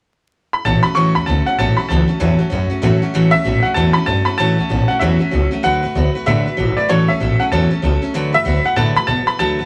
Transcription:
0.53 B5
0.65 A1 A2 E3 F#3 A3 C#4 F#4 A5
0.83 F#3 A3 C#4 F#4 B5, muted upright bass stroke
0.95 C#2 A2 E3 F#3 A3 C#4 F#4 C#6
1.15 E2 F#3 F#4 B5
1.26 D2 F#3 A3 C#4 F#4 A5
1.46 F#3 A3 C#4 F#4 F#5, muted upright bass stroke
1.58 A1 A2 E3 F#3 A3 C#4 F#4 A5
1.77 F#3 A3 C#4 F#4 B5, muted upright bass stroke
1.89 C#2 A2 E3 F#3 A3 C#4 F#4 A5
2.08 F#3 A3 C#4 F#4, muted upright bass stroke
2.20 E2 A2 E3 F#3 A3 C#4 F#4
2.39 F#3 A3 C#4 F#4, muted upright bass stroke
2.50 F#2 F#3 A3 C#4 F#4
2.70 F#3 A3 C#4 F#4, muted upright bass stroke
2.82 A2 E3 F#3 A3 C#4 F#4
3.02 F#3 A3 C#4 F#4, muted upright bass stroke
3.13 A1 A2 E3 F#3 A3 C#4 F#4
3.31 D2 A3 C#4 F#4 E5
3.36 F#3
3.44 A1 F#3 A3 C#4 F#4
3.62 F#3 A3 C#4 F#4 F#5, muted upright bass stroke
3.74 E2 A2 E3 F#3 A3 C#4 F#4 A5
3.93 C#4 F#4 B5, muted upright bass stroke
3.97 F#3 A3
4.06 G2 F#3 A3 C#4 F#4 A5
4.25 F#3 A3 C#4 F#4 B5, muted upright bass stroke
4.38 A1 A2 E3 F#3 A3 C#4 F#4 A5
4.57 D2 F#3 A3 C#4 F#4
4.69 A1 F#3 A3 C#4 F#4
4.88 F#3 A3 C#4 F#4 F#5, muted upright bass stroke
4.99 E2 A2 E3 F#3 A3 C#4 F#4 E5
5.19 F#3 A3 C#4 F#4, muted upright bass stroke
5.31 C#2 F#3 A3 C#4 F#4
5.51 F#3 A3 C#4 F#4, muted upright bass stroke
5.63 D2 D3 F#3 A3 F#4 B4 F#5
5.83 G2 A3 F#4 B4
5.95 D2 F#3 A3 F#4 B4
6.15 A3 F#4 B4, muted upright bass stroke
6.26 A2 D3 F#3 A3 F#4 B4 E5
6.46 A3 F#4 B4, muted upright bass stroke
6.57 G#1 F#3 A3 F#4 B4
6.77 A3 F#4 B4 D5, muted upright bass stroke
6.89 A1 A2 E3 F#3 A3 C#4 A4 C#5
7.08 D2 F#3 A3 C#4 A4 E5
7.20 A1 F#3 A3 C#4 A4
7.39 F#3 A3 C#4 A4 F#5, muted upright bass stroke
7.52 E2 A2 E3 F#3 A3 C#4 A4 A5
7.71 F#3 A3 C#4 A4, muted upright bass stroke
7.82 C#2 F#3 A3 C#4 A4
8.02 F#3 A3 C#4 A4, muted upright bass stroke
8.14 D2 D3 F#3 A3 F#4 B4
8.33 G2 A3 F#4 B4 E5
8.45 D2 F#3 A3 F#4 B4
8.64 A3 F#4 B4 F#5, muted upright bass stroke
8.76 A2 D3 F#3 A3 F#4 B4 A5
8.95 A3 F#4 B4 B5, muted upright bass stroke
9.07 B2 F#3 A3 F#4 B4 A5
9.27 A3 F#4 B4 B5, muted upright bass stroke
9.39 D2 D3 F#3 A3 F#4 B4 A5
9.59 G2 A3 F#4 B4

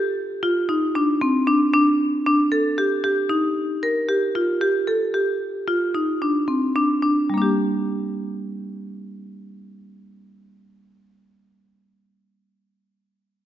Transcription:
Already playing: G4
0.43 F4
0.69 D#4
0.95 D4
1.21 C4
1.47 D4
1.73 D4
2.26 D4
2.52 A4
2.78 G4
3.04 G4
3.29 D#4
3.83 A#4
4.09 G4
4.35 F4
4.61 G4
4.87 A4
5.14 G4
5.68 F4
5.95 D#4
6.22 D4
6.48 C4
6.76 D4
7.02 D4
7.30 G3
7.34 A#3 D4
7.42 G4

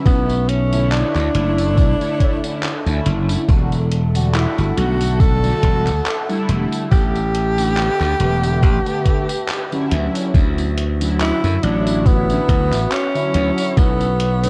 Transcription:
Already playing: C#6
0.05 B1 D3 A3 B3 C#4 E4 A4 E5 A5, kick, closed hi-hat, tambourine
0.30 closed hi-hat, tambourine
0.49 C#4, closed hi-hat
0.72 D3 A3 E4 C#5, closed hi-hat, tambourine
0.91 D4, clap, closed hi-hat, tambourine
1.15 D2, clap, closed hi-hat, tambourine
1.34 F#1 D3 A3 E4 C#5, closed hi-hat
1.58 closed hi-hat, tambourine
1.77 B1, kick, closed hi-hat, tambourine
2.00 D3 A3 E4 C#5, closed hi-hat, tambourine
2.20 kick, closed hi-hat
2.43 D3 A3 C#4 E4, closed hi-hat, tambourine
2.63 clap, closed hi-hat, tambourine
2.86 D2 D3 A3 C#4 E4, closed hi-hat, tambourine
3.06 F#1, closed hi-hat
3.29 closed hi-hat, tambourine
3.48 E1 D3 G3 A3 F#4 E5 F#5, kick, closed hi-hat, tambourine
3.72 closed hi-hat, tambourine
3.92 closed hi-hat
4.15 D3 G3 A3 F#4, closed hi-hat, tambourine
4.34 E4, clap, closed hi-hat, tambourine
4.58 G1, closed hi-hat, tambourine
4.77 B1 D3 G3 A3 F#4, closed hi-hat
5.01 closed hi-hat, tambourine
5.20 A4, kick, closed hi-hat, tambourine
5.43 D3 G3 A3 F#4, closed hi-hat, tambourine
5.63 E1, kick, closed hi-hat
5.87 D2, clap, closed hi-hat, tambourine
6.06 clap, closed hi-hat, tambourine
6.28 D3 G3 A3 E4, closed hi-hat, tambourine
6.49 E1, closed hi-hat
6.72 closed hi-hat, tambourine
6.91 A1 D3 A3 B3 G4 B4, kick, closed hi-hat, tambourine
7.15 closed hi-hat, tambourine
7.35 closed hi-hat
7.57 D3 A3 B3 G4, closed hi-hat, tambourine
7.77 clap, closed hi-hat, tambourine
8.01 D2, clap, closed hi-hat, tambourine
8.19 E1 D3 A3 B3 G4, closed hi-hat
8.44 closed hi-hat, tambourine
8.63 A1, kick, closed hi-hat, tambourine
8.86 D3 A3 B3 G4, closed hi-hat, tambourine
9.06 kick, closed hi-hat
9.29 closed hi-hat, tambourine
9.48 clap, closed hi-hat, tambourine
9.71 D3 F#3 C#4 E4, closed hi-hat, tambourine
9.91 D2 F#4 E5 C#6, closed hi-hat
10.15 closed hi-hat, tambourine
10.34 D2 F#3 C#4 E4, kick, closed hi-hat, tambourine
10.58 closed hi-hat, tambourine
10.77 closed hi-hat
11.00 D3 F#3 C#4 E4, closed hi-hat, tambourine
11.20 E4, clap, closed hi-hat, tambourine
11.44 F#2, closed hi-hat, tambourine
11.62 A1 D3 F#3 D4 E4 C#5, closed hi-hat
11.87 closed hi-hat, tambourine
12.06 B3, kick, closed hi-hat, tambourine
12.29 D3 F#3 C#4 E4, closed hi-hat, tambourine
12.49 D2, kick, closed hi-hat
12.73 A1, clap, closed hi-hat, tambourine
12.92 C#4, clap, closed hi-hat, tambourine
13.14 D3 F#3 C#4 E4, closed hi-hat, tambourine
13.34 D2, closed hi-hat
13.58 closed hi-hat, tambourine
13.77 B1 D3 A3 B3 C#4 E4 A4 D6, kick, closed hi-hat, tambourine
14.01 closed hi-hat, tambourine
14.20 closed hi-hat
14.43 D3 A3 C#4 E4, closed hi-hat, tambourine

